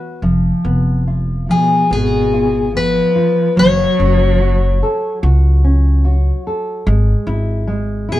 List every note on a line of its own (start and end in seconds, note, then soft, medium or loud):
0.00 0.21 F#4 soft
0.00 0.19 B4 medium
0.22 0.50 F1 medium
0.22 1.48 F3 medium
0.65 1.47 F1 medium
0.65 1.06 B3 soft
1.07 1.48 F4 medium
1.49 1.88 B2 medium
1.49 1.90 F3 soft
1.49 1.92 G#4 medium
1.91 2.99 G#1 medium
1.91 2.71 B2 medium
1.91 2.32 B3 medium
1.91 2.72 G#4 medium
2.33 2.74 F4 medium
2.74 3.54 F3 medium
2.74 3.15 B3 soft
2.74 3.59 B4 medium
3.16 3.56 F4 medium
3.56 3.84 F#1 medium
3.56 6.82 F#3 medium
3.56 5.20 F#3 loud
3.56 5.20 C#5 loud
3.98 4.80 F#1 medium
3.98 4.39 C#4 medium
4.41 4.81 F#4 medium
4.83 5.22 A4 medium
5.23 6.30 C#2 loud
5.23 5.63 F#4 medium
5.64 6.04 C#4 medium
6.05 6.45 F#4 medium
6.47 6.86 A4 medium
6.87 7.13 G#1 loud
6.87 7.66 G#3 medium
7.27 8.07 G#1 medium
7.27 7.67 E4 medium
7.67 8.07 G#3 medium
8.09 8.20 B2 medium
8.09 8.20 E4 medium
8.09 8.20 G#4 medium